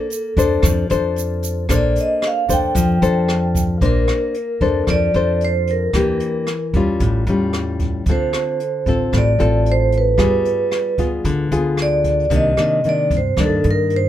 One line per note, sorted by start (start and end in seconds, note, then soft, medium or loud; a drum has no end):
0.00 0.61 A#3 medium
0.00 0.61 A4 medium
0.10 closed hi-hat soft
0.10 shaker medium
0.37 0.62 F2 medium
0.37 0.86 D4 medium
0.37 0.87 A4 medium
0.37 0.87 C5 medium
0.37 kick medium
0.37 closed hi-hat soft
0.37 shaker medium
0.63 0.88 F2 medium
0.63 1.68 F3 medium
0.63 kick medium
0.63 cross-stick medium
0.63 closed hi-hat soft
0.63 shaker medium
0.89 1.66 F2 medium
0.89 1.66 D4 medium
0.89 1.66 A4 medium
0.89 1.66 C5 medium
0.89 closed hi-hat soft
0.89 shaker soft
1.16 closed hi-hat soft
1.16 shaker medium
1.42 closed hi-hat soft
1.42 shaker medium
1.69 1.94 A#1 medium
1.69 2.73 A#3 medium
1.69 2.45 D4 medium
1.69 2.46 A4 medium
1.69 2.46 C5 medium
1.69 kick medium
1.69 cross-stick medium
1.69 closed hi-hat medium
1.69 shaker medium
1.75 1.99 D5 medium
1.96 closed hi-hat soft
1.96 shaker soft
2.01 2.25 D#5 medium
2.22 cross-stick medium
2.22 closed hi-hat soft
2.27 2.51 F5 medium
2.49 2.74 F2 medium
2.49 2.98 D4 medium
2.49 2.98 A4 medium
2.49 2.99 C5 medium
2.49 kick medium
2.49 closed hi-hat soft
2.49 shaker medium
2.53 3.67 G5 medium
2.75 3.00 F2 medium
2.75 3.79 F3 medium
2.75 kick medium
2.75 closed hi-hat medium
2.75 shaker medium
3.02 3.78 F2 medium
3.02 3.78 D4 medium
3.02 3.78 A4 medium
3.02 3.78 C5 medium
3.02 closed hi-hat soft
3.02 shaker soft
3.29 cross-stick medium
3.29 closed hi-hat soft
3.55 kick medium
3.55 closed hi-hat soft
3.55 shaker medium
3.81 4.07 A#1 medium
3.81 4.86 A#3 medium
3.81 4.35 D4 medium
3.81 4.35 C5 medium
3.81 kick medium
3.81 closed hi-hat medium
3.85 4.93 A#4 medium
4.08 cross-stick medium
4.08 closed hi-hat soft
4.34 closed hi-hat soft
4.61 4.86 F2 medium
4.61 5.11 D4 medium
4.61 5.11 A4 medium
4.61 5.11 C5 medium
4.61 kick soft
4.61 closed hi-hat soft
4.87 5.13 F2 medium
4.87 5.92 F3 medium
4.87 5.44 D5 medium
4.87 kick medium
4.87 cross-stick soft
4.87 closed hi-hat medium
5.14 5.90 F2 medium
5.14 5.91 D4 medium
5.14 5.91 A4 medium
5.14 5.91 C5 medium
5.14 closed hi-hat soft
5.41 closed hi-hat soft
5.45 5.70 C5 loud
5.67 6.72 A#4 medium
5.67 closed hi-hat soft
5.93 6.19 E2 medium
5.93 6.98 E3 medium
5.93 6.48 A#3 medium
5.93 6.48 D4 soft
5.93 6.48 G4 medium
5.93 kick medium
5.93 cross-stick medium
5.93 closed hi-hat medium
6.20 closed hi-hat soft
6.47 cross-stick medium
6.47 closed hi-hat soft
6.73 6.99 E2 medium
6.73 7.24 G3 medium
6.73 7.24 C#4 medium
6.73 7.24 F4 medium
6.73 kick medium
6.73 closed hi-hat soft
7.00 7.25 A1 medium
7.00 8.05 A2 medium
7.00 kick medium
7.00 closed hi-hat medium
7.27 8.03 E2 medium
7.27 8.04 G3 medium
7.27 8.04 C#4 medium
7.27 8.04 F4 medium
7.27 closed hi-hat soft
7.53 cross-stick medium
7.53 closed hi-hat soft
7.79 kick medium
7.79 closed hi-hat soft
8.06 8.31 D2 medium
8.06 9.12 D3 medium
8.06 8.61 C4 medium
8.06 8.61 F4 soft
8.06 8.61 A4 medium
8.06 kick medium
8.06 closed hi-hat medium
8.12 9.19 C5 medium
8.33 cross-stick medium
8.33 closed hi-hat soft
8.60 closed hi-hat soft
8.86 9.11 A1 medium
8.86 9.36 C4 medium
8.86 9.36 F4 medium
8.86 9.37 A4 medium
8.86 kick soft
8.86 closed hi-hat soft
9.13 9.38 A1 medium
9.13 10.16 A2 medium
9.13 kick soft
9.13 cross-stick soft
9.13 closed hi-hat soft
9.18 9.70 D5 medium
9.39 10.16 A1 medium
9.39 10.15 C4 medium
9.39 10.15 F4 medium
9.39 10.15 A4 medium
9.39 closed hi-hat soft
9.66 closed hi-hat soft
9.72 9.96 C5 medium
9.92 closed hi-hat soft
9.98 10.97 B4 medium
10.18 10.44 G1 medium
10.18 11.22 G3 medium
10.18 10.94 B3 medium
10.18 10.94 F4 medium
10.18 10.95 G#4 medium
10.18 kick medium
10.18 cross-stick medium
10.18 closed hi-hat medium
10.45 closed hi-hat soft
10.72 cross-stick medium
10.72 closed hi-hat soft
10.98 11.23 D2 medium
10.98 11.48 B3 medium
10.98 11.48 F4 medium
10.98 11.48 G#4 medium
10.98 kick soft
10.98 closed hi-hat soft
11.25 11.50 D2 medium
11.25 12.29 D3 medium
11.25 kick medium
11.25 closed hi-hat medium
11.51 12.27 D2 medium
11.51 12.27 B3 medium
11.51 12.27 F4 medium
11.51 12.28 G#4 medium
11.51 closed hi-hat soft
11.77 cross-stick medium
11.77 closed hi-hat soft
11.82 12.30 D5 loud
12.04 kick soft
12.04 closed hi-hat soft
12.30 12.56 C2 medium
12.30 13.34 C3 medium
12.30 12.53 D#3 soft
12.30 12.54 A#3 medium
12.30 12.54 D4 medium
12.30 kick medium
12.30 closed hi-hat medium
12.36 12.61 D#5 medium
12.57 12.80 D#3 medium
12.57 12.80 A#3 medium
12.57 12.80 D4 medium
12.57 cross-stick medium
12.57 closed hi-hat soft
12.62 12.87 D#5 medium
12.84 13.19 D#3 soft
12.84 13.20 A#3 medium
12.84 13.20 D4 medium
12.84 closed hi-hat soft
12.89 13.12 D5 medium
13.11 13.36 G2 medium
13.11 kick medium
13.11 closed hi-hat soft
13.17 13.41 C5 medium
13.37 13.62 G2 medium
13.37 14.09 G2 medium
13.37 14.09 D#3 medium
13.37 14.09 A#3 medium
13.37 14.09 D4 medium
13.37 kick medium
13.37 cross-stick medium
13.37 closed hi-hat medium
13.43 13.68 A4 medium
13.64 14.09 G2 medium
13.64 closed hi-hat soft
13.71 13.95 A#4 medium
13.90 closed hi-hat soft
13.96 14.09 C5 medium